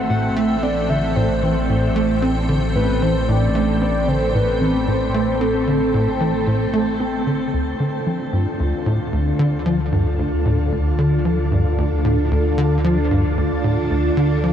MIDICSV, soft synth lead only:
0, 0, Header, 1, 2, 480
1, 0, Start_track
1, 0, Key_signature, 0, "minor"
1, 0, Tempo, 530973
1, 1050, Time_signature, 4, 2, 24, 8
1, 6811, Key_signature, -1, "minor"
1, 13134, End_track
2, 0, Start_track
2, 0, Title_t, "Soft synth lead"
2, 0, Program_c, 0, 80
2, 89, Note_on_c, 0, 78, 110
2, 313, Note_off_c, 0, 78, 0
2, 328, Note_on_c, 0, 76, 93
2, 567, Note_on_c, 0, 74, 96
2, 581, Note_off_c, 0, 76, 0
2, 807, Note_on_c, 0, 76, 89
2, 821, Note_off_c, 0, 74, 0
2, 1047, Note_on_c, 0, 72, 90
2, 1061, Note_off_c, 0, 76, 0
2, 2009, Note_off_c, 0, 72, 0
2, 2491, Note_on_c, 0, 71, 104
2, 2732, Note_on_c, 0, 72, 104
2, 2745, Note_off_c, 0, 71, 0
2, 2972, Note_on_c, 0, 74, 116
2, 2986, Note_off_c, 0, 72, 0
2, 3445, Note_off_c, 0, 74, 0
2, 3450, Note_on_c, 0, 74, 106
2, 3691, Note_on_c, 0, 72, 94
2, 3705, Note_off_c, 0, 74, 0
2, 3932, Note_on_c, 0, 71, 108
2, 3945, Note_off_c, 0, 72, 0
2, 4407, Note_off_c, 0, 71, 0
2, 4412, Note_on_c, 0, 72, 103
2, 4889, Note_on_c, 0, 69, 93
2, 4903, Note_off_c, 0, 72, 0
2, 6330, Note_off_c, 0, 69, 0
2, 13134, End_track
0, 0, End_of_file